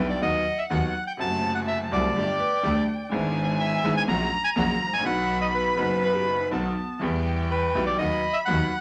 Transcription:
Already playing: upright piano B1 B2 D3 G3 B3 E4, double bass B1, string section G3 D4 E4, violin G5
0.10 bandoneon D5
0.21 upright piano D#2 D#3 F#3 B3 F#4, double bass D#2, string section B3 D#4 F#4, bandoneon D#5, violin F#5
0.58 bandoneon E5
0.70 upright piano D#2 D#3 F#3 B3 F#4, double bass D#2, string section B3 D#4 F#4, bandoneon F#5
1.07 bandoneon G5
1.17 double bass F#1, upright piano F#2 C3 F#3 A3, string section A3 C4 F#4, violin A5, bandoneon A5
1.21 upright piano F#4
1.55 bandoneon F#5
1.68 bandoneon E5
1.91 double bass C2, upright piano C2 C3 F#3 A3 F#4, string section A3 C4 F#4, bandoneon D5
2.15 double bass G1, upright piano G1 G2 D3 G3 A3 G4, string section A3 D4 G4, violin G5
2.39 clarinet B4
2.63 double bass D2, upright piano D2 D3 G3 A3 G4, string section A3 D4 G4, clarinet A4
2.76 clarinet D5
3.09 upright piano G#1 G#2 D3 G#3 B3, double bass G#1, string section G#3 D4 E4, violin G#5
3.14 upright piano E4
3.60 bandoneon E5
3.83 double bass G#1, upright piano G#1 G#2 D3 G#3 B3 E4, string section G#3 D4 E4
3.97 bandoneon G#5
4.07 upright piano A#1 A#2 C#3 F#3 A#3 F#4, double bass A#1, string section A#3 C#4 F#4, violin A#5, bandoneon A#5
4.44 bandoneon G#5
4.56 upright piano A#1 A#2 C#3 F#3 A#3 F#4, double bass A#1, string section A#3 C#4 F#4, bandoneon A#5
4.80 double bass A1
4.86 upright piano G#1
4.93 upright piano A1, bandoneon G#5
4.99 upright piano A#1 D#3
5.04 double bass B1, upright piano B1 B2 F#3 B3 F#4, string section B3 D#4 F#4, bandoneon F#5, violin B5
5.41 bandoneon D#5
5.54 bandoneon B4
5.75 upright piano F#1 F#2 D#3 F#3 B3, double bass F#1, string section B3 D#4 F#4
5.79 upright piano F#4
6.03 clarinet B4, violin B5
6.15 clarinet G4
6.27 clarinet F#4
6.40 clarinet D#4
6.51 upright piano B1 B2 D#3 F#3 B3 F#4, double bass B1, string section B3 D#4 F#4, violin A5
6.64 clarinet B3
7.01 upright piano E2 E3 G3 B3 G4, double bass E2, string section B3 E4 G4, violin G5
7.51 bandoneon B4
7.74 double bass B1, upright piano B1 B2 E3 G3 B3 G4, string section B3 E4 G4
7.86 bandoneon D5
7.98 double bass D#2, upright piano D#2 D#3 F#3 B3 F#4, string section B3 D#4 F#4, bandoneon D#5, violin B5
8.33 bandoneon E5
8.45 double bass D#2, upright piano D#2 D#3 F#3 B3 F#4, string section B3 D#4 F#4, bandoneon F#5

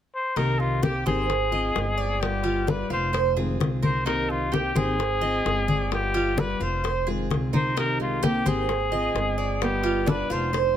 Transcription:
0.15 trumpet C5
0.36 upright bass C2, steel-string acoustic guitar C3 D#3 A#3 C4 G4, cuban tres D#4, trumpet A#4, high bongo, high conga
0.59 trumpet F4, high conga
0.83 steel-string acoustic guitar D#3 A#3 C4 G4, cuban tres G4, trumpet G4, high bongo, high conga
1.06 upright bass G#1, steel-string acoustic guitar D#3 A#3 C4 G4, trumpet G#4, cuban tres C5, high conga
1.29 muted steel-string acoustic guitar stroke, high bongo, high conga
1.52 steel-string acoustic guitar C4 F4, cuban tres D#5, high conga
1.75 upright bass G1, steel-string acoustic guitar G#3 C4 F4, high bongo, low bongo, high conga
1.98 cuban tres D5
2.21 steel-string acoustic guitar G3 B3 F4, trumpet G4, high bongo, high conga
2.44 cuban tres F4, high conga
2.67 steel-string acoustic guitar G3 B3 F4, trumpet B4, cuban tres D5, high bongo, high conga
2.90 upright bass F1, steel-string acoustic guitar B3 F4, trumpet C5, cuban tres F5, high bongo, high conga
3.13 cuban tres C5, muted steel-string acoustic guitar stroke, high bongo, high conga
3.37 steel-string acoustic guitar D#3 G#3 C4 F4, cuban tres G#4, high bongo, high conga
3.59 upright bass C2, steel-string acoustic guitar D#3 G#3 C4 F4, high bongo, low bongo, high conga
3.83 cuban tres A#4, trumpet C5, high bongo, high conga
4.05 steel-string acoustic guitar C3 D#3 A#3 C4 G4, cuban tres D#4, trumpet A#4, high bongo, high conga
4.30 trumpet F4, high conga
4.51 steel-string acoustic guitar D#3 A#3 C4 G4, cuban tres G4, trumpet G4, high bongo, high conga
4.75 upright bass G#1, steel-string acoustic guitar D#3 A#3 C4 G4, trumpet G#4, cuban tres C5, high conga
4.98 muted steel-string acoustic guitar stroke, high bongo, high conga
5.21 steel-string acoustic guitar C4 F4, cuban tres D#5, high conga
5.45 upright bass G1, steel-string acoustic guitar G#3 C4 F4, high bongo, low bongo, high conga
5.68 cuban tres D5, high conga
5.91 steel-string acoustic guitar G3 B3 F4, trumpet G4, high bongo, high conga
6.14 cuban tres F4, high conga
6.36 steel-string acoustic guitar G3 B3 F4, trumpet B4, cuban tres D5, high bongo, high conga
6.60 upright bass F1, steel-string acoustic guitar B3 F4, trumpet C5, cuban tres F5, high bongo, high conga
6.84 cuban tres C5, muted steel-string acoustic guitar stroke, high bongo, high conga
7.07 steel-string acoustic guitar D#3 G#3 C4 F4, cuban tres G#4, high bongo, high conga
7.30 upright bass C2, steel-string acoustic guitar D#3 G#3 C4 F4, high bongo, low bongo, high conga
7.53 nylon-string guitar D#4, cuban tres A#4, trumpet C5, high bongo, high conga
7.77 steel-string acoustic guitar C3 D#3 A#3 C4 G4, cuban tres D#4, nylon-string guitar D#4, trumpet A#4, high bongo, high conga
8.00 nylon-string guitar G#3, trumpet F4, high conga
8.23 steel-string acoustic guitar D#3 A#3 C4 G4, nylon-string guitar A#3, cuban tres G4, trumpet G4, high bongo, high conga
8.46 upright bass G#1, steel-string acoustic guitar D#3 A#3 C4 G4, nylon-string guitar C4, trumpet G#4, cuban tres C5, high conga
8.69 muted steel-string acoustic guitar stroke, high bongo, high conga
8.92 steel-string acoustic guitar C4 F4, cuban tres D#5, high conga
9.14 upright bass G1, steel-string acoustic guitar G#3 C4 F4, high bongo, low bongo, high conga
9.38 cuban tres D5
9.62 steel-string acoustic guitar G3 B3 F4, nylon-string guitar B3, trumpet G4, high bongo, high conga
9.83 cuban tres F4, high conga
10.06 steel-string acoustic guitar G3 B3 F4, nylon-string guitar D4, trumpet B4, cuban tres D5, high bongo, high conga
10.30 upright bass F1, steel-string acoustic guitar B3 F4, nylon-string guitar D#4, trumpet C5, cuban tres F5, high bongo, high conga
10.53 cuban tres C5, muted steel-string acoustic guitar stroke, high bongo, high conga

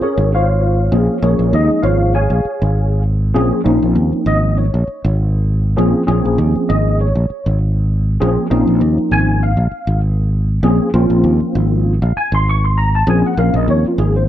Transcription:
0.01 tine electric piano C#4 G#4 A#4 C#5, muted fretless electric bass stroke
0.18 fretless electric bass G#1
0.35 tine electric piano F4 C5 C#5 F5
0.92 fretless electric bass A#1, tine electric piano F3 A#3 C4 C#4 G#4
1.22 fretless electric bass A#1, tine electric piano F3 G#3 A#3 C#4 G#4 A#4 C#5
1.39 fretless electric bass A#1
1.53 fretless electric bass D#2, tine electric piano D#4 D#5
1.70 muted fretless electric bass stroke
1.82 fretless electric bass G#1, tine electric piano F4 C5 C#5 F5
2.15 tine electric piano G#4 C#5 F5 G#5
2.30 fretless electric bass A#1
2.45 muted fretless electric bass stroke
2.62 fretless electric bass G#1
3.34 fretless electric bass A#1, tine electric piano F3 A#3 C4 C#4 G#4
3.64 fretless electric bass A#1, tine electric piano F3 A#3 C4 C#4 D#4
3.83 fretless electric bass A#1
3.96 fretless electric bass D#2
4.13 muted fretless electric bass stroke
4.26 fretless electric bass G#1, tine electric piano D#5
4.58 tine electric piano C#5
4.74 fretless electric bass A#1
4.88 muted fretless electric bass stroke
5.04 fretless electric bass G#1
5.76 fretless electric bass A#1, tine electric piano F3 A#3 C4 C#4 G#4
6.06 fretless electric bass A#1, tine electric piano F3 A#3 C4 C#4 G#4
6.25 fretless electric bass A#1
6.38 fretless electric bass D#2
6.55 muted fretless electric bass stroke
6.69 fretless electric bass G#1, tine electric piano D#5
7.01 tine electric piano C#5
7.15 fretless electric bass A#1
7.30 muted fretless electric bass stroke
7.46 fretless electric bass G#1
8.20 fretless electric bass A#1, tine electric piano F3 A#3 C4 C#4 G#4
8.50 fretless electric bass A#1, tine electric piano F3 A#3 C4 C#4 D#4
8.67 fretless electric bass A#1
8.81 fretless electric bass D#2
8.98 muted fretless electric bass stroke
9.11 fretless electric bass G#1, tine electric piano G#5
9.43 tine electric piano F5
9.57 fretless electric bass A#1
9.71 muted fretless electric bass stroke
9.87 fretless electric bass G#1
10.63 fretless electric bass A#1, tine electric piano F3 A#3 C4 C#4 G#4
10.94 fretless electric bass A#1, tine electric piano F3 A#3 C4 C#4 F4
11.10 fretless electric bass A#1
11.24 fretless electric bass D#2
11.40 muted fretless electric bass stroke
11.55 fretless electric bass G#1
12.02 fretless electric bass A#1, tine electric piano F5
12.17 tine electric piano G#5, muted fretless electric bass stroke
12.32 fretless electric bass G#1, tine electric piano C6
12.49 tine electric piano C#6
12.64 tine electric piano C6
12.78 tine electric piano A#5
12.95 tine electric piano A5
13.07 fretless electric bass A#1, tine electric piano F3 A#3 C4 C#4 G#4 G#5
13.26 tine electric piano F#5
13.37 fretless electric bass A#1, tine electric piano F3 A#3 C4 C#4 A#4 F5
13.54 fretless electric bass A#1, tine electric piano D#5
13.68 fretless electric bass D#2, tine electric piano C#5
13.85 tine electric piano F4, muted fretless electric bass stroke
13.98 fretless electric bass G#1, tine electric piano G#4
14.16 tine electric piano C5

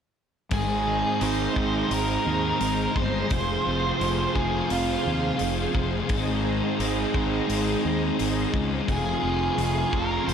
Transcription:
0.50 fingered electric bass G#1, distorted electric guitar G#2 D#3 G#3, overdriven electric guitar G#3 C4 D#4 G#4, string machine G#4 C5 D#5 A#5, lead electric guitar G#4, kick, open hi-hat
0.85 distorted electric guitar D#3 G#3
1.21 fingered electric bass G#1, distorted electric guitar G#2 D#3 G#3, lead electric guitar C5, open hi-hat
1.56 fingered electric bass G#1, distorted electric guitar D#3 G#3, kick
1.91 fingered electric bass G#1, distorted electric guitar G#2 D#3 G#3, lead electric guitar A#4, open hi-hat
2.26 fingered electric bass D#2, distorted electric guitar D#3 G#3
2.59 fingered electric bass G#1, distorted electric guitar G#2 D#3 G#3, open hi-hat
2.95 fingered electric bass G1, distorted electric guitar D#3 G#3, lead electric guitar C5, kick
3.29 fingered electric bass F1, distorted electric guitar F2 C3 F3, overdriven electric guitar F3 C4 F4 G#4, string machine F5 C6, kick, open hi-hat
3.64 fingered electric bass F1, distorted electric guitar C3 F3
3.99 fingered electric bass F1, distorted electric guitar F2 C3 F3, open hi-hat
4.34 fingered electric bass F1, distorted electric guitar C3 F3, lead electric guitar G#4, kick
4.69 fingered electric bass F1, distorted electric guitar F2 C3 F3, lead electric guitar F4, open hi-hat
5.04 fingered electric bass D#2, distorted electric guitar C3 F3
5.39 fingered electric bass F1, distorted electric guitar F2 C3 F3, open hi-hat
5.74 fingered electric bass F1, distorted electric guitar C3 F3, kick
6.08 fingered electric bass G#1, distorted electric guitar G#2 D#3 G#3, overdriven electric guitar G#3 C4 D#4 G#4, string machine C5 D#5 A#5, kick, open hi-hat
6.43 distorted electric guitar D#3 G#3
6.79 fingered electric bass G#1, distorted electric guitar G#2 D#3 G#3, open hi-hat
7.14 fingered electric bass G#1, distorted electric guitar D#3 G#3, kick
7.48 fingered electric bass G#1, distorted electric guitar G#2 D#3 G#3, open hi-hat
7.83 fingered electric bass D#2, distorted electric guitar D#3 G#3
8.17 fingered electric bass G#1, distorted electric guitar G#2 D#3 G#3, open hi-hat
8.53 fingered electric bass C#2, distorted electric guitar D#3 G#3, kick
8.86 fingered electric bass F1, distorted electric guitar F2 C3 F3, overdriven electric guitar F3 C4 F4 G#4, string machine F5 C6, kick, open hi-hat
8.92 lead electric guitar G#4
9.21 fingered electric bass F1, distorted electric guitar C3 F3
9.56 fingered electric bass F1, distorted electric guitar F2 C3 F3, open hi-hat
9.91 fingered electric bass F1, distorted electric guitar C3 F3, lead electric guitar A#4, kick
10.27 fingered electric bass F1, distorted electric guitar F2 C3 F3, lead electric guitar C5, open hi-hat

